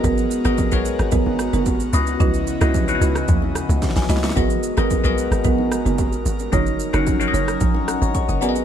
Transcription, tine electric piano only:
\new Staff \with { instrumentName = "Tine electric piano" } { \time 4/4 \key gis \minor \tempo 4 = 111 << { r1 | r2. r16 <b' gis''>16 <dis'' b''>16 <e'' cis'''>16~ | <e'' cis'''>16 r2. r8. | r2 r8 <ais' fis''>16 <cis'' ais''>16 cis'''16 <fis'' dis'''>8 r16 | } \\ { <b fis' gis' ais' dis''>8 r16 <b fis' gis' ais' dis''>8 <b fis' gis' ais' cis''>4. r8. <cis' e' fis' b' dis''>8~ | <cis' e' fis' b' dis''>8 r16 <cis' e' fis' b' dis''>8 <cis' dis' e' fis' b' fis''>4. r4 r16 | <b fis' gis' ais' dis''>8 r16 <b fis' gis' ais' dis''>8 <b fis' gis' ais' dis''>4. r4 r16 | <cis' dis' fis' ais' dis''>8 r16 <cis' dis' fis' ais' fis''>8 <cis' dis' fis' ais' cis'' dis''>4. r8. <b fis' gis' ais' d'' dis''>8 | } >> }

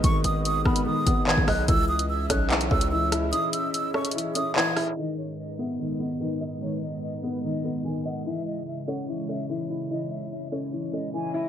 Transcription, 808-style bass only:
\new Staff \with { instrumentName = "808-style bass" } { \clef bass \time 4/4 \key gis \minor \tempo 4 = 146 gis,,8 gis,,4 gis,,8 r8 gis,,8. gis,,16 b,,8 | cis,4. b,,4 cis,4. | r1 | r1 |
r1 | r1 | r1 | }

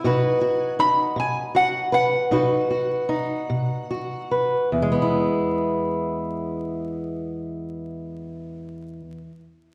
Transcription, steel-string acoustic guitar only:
\new Staff \with { instrumentName = "Steel-string acoustic guitar" } { \time 12/8 \key e \major \tempo 4. = 48 << { <dis' fis' b'>8 fis'8 dis'4 fis'8 b'8 <dis' fis' b'>8 fis'8 dis'4 fis'8 b'8 | <gis b e'>1. | } \\ { b,4 r8 b,4 r8 b,4 r8 b,4 r8 | e,1. | } >> }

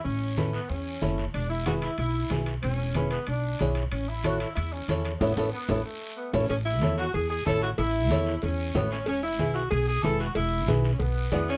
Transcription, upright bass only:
\new Staff \with { instrumentName = "Upright bass" } { \clef bass \time 4/4 \key a \major \tempo 4 = 186 a,,2 e,4 fis,,4 | e,,2 b,,4 b,,4 | e,,2 b,,4 b,,4 | a,,2 e,4 e,4 |
a,,8 a,,8 r8 a,,8 r4. a,,8 | a,,4 e,4 e,4 a,,4 | a,,4 e,4 e,4 a,,4 | e,,4 b,,4 b,,4 e,,4 |
e,,4 b,,4 b,,4 e,4 | }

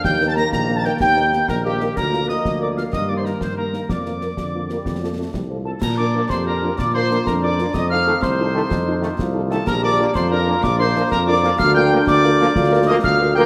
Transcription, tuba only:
\new Staff \with { instrumentName = "Tuba" } { \clef bass \time 6/8 \key bes \major \tempo 4. = 125 ees,4. bes,,4. | ees,4. bes,,4. | d,4. d,4. | g,4. g,4. |
f,4. f,4. | f,4. c,4. | bes,4. f,4. | bes,4. f,4. |
f,4. c,4. | f,4. c,4. | bes,,4. f,4. | bes,,4. f,4. |
d,4. d,4. | d,4. d,4. | }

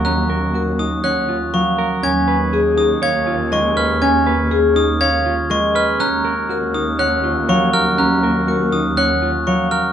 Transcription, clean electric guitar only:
\new Staff \with { instrumentName = "Clean electric guitar" } { \time 4/4 \key ees \minor \tempo 4 = 121 des'8 bes'8 ges'8 ees'8 des''8 f'8 r8 bes'8 | des'8 ces''8 aes'8 ees'8 des''8 f'8 r8 ces''8 | des'8 ces''8 aes'8 ees'8 des''8 f'8 r8 ces''8 | des'8 bes'8 ges'8 ees'8 des''8 f'8 des''8 bes'8 |
des'8 bes'8 ges'8 ees'8 des''8 f'8 des''8 bes'8 | }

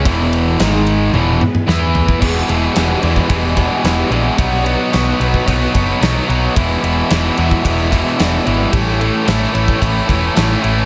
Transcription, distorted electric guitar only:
\new Staff \with { instrumentName = "Distorted electric guitar" } { \clef bass \time 4/4 \key e \major \tempo 4 = 111 <e, b, e>4 <gis, dis gis>4 <e, b, e>8 r8 <e b e'>4 | <e, b, e>8 <e, b, e>8 <e, b, e>8 <e, b, e>8 <e, b, e>8 <e, b, e>8 <e, b, e>8 <e, b, e>8 | <b, fis b>8 <b, fis b>8 <b, fis b>8 <b, fis b>8 <b, fis b>8 <b, fis b>8 <b, fis b>8 <b, fis b>8 | <e, b, e>8 <e, b, e>8 <e, b, e>8 <e, b, e>8 <e, b, e>8 <e, b, e>8 <e, b, e>8 <e, b, e>8 |
<a, e a>8 <a, e a>8 <a, e a>8 <a, e a>8 <a, e a>8 <a, e a>8 <a, e a>8 <a, e a>8 | }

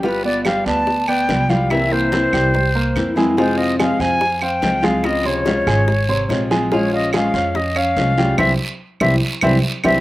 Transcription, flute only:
\new Staff \with { instrumentName = "Flute" } { \time 4/4 \key c \phrygian \tempo 4 = 144 b'8 d''8 f''8 a''4 g''4 f''8 | e''8 c''2. r8 | c''8 ees''8 f''8 aes''8~ \tuplet 3/2 { aes''8 aes''16 g''8.~ } g''8 f''8 | ees''8 des''2. r8 |
des''8 ees''8 f''4 ees''8 f''4. | e''8 r4 e''8 r8 e''8 r8 e''8 | }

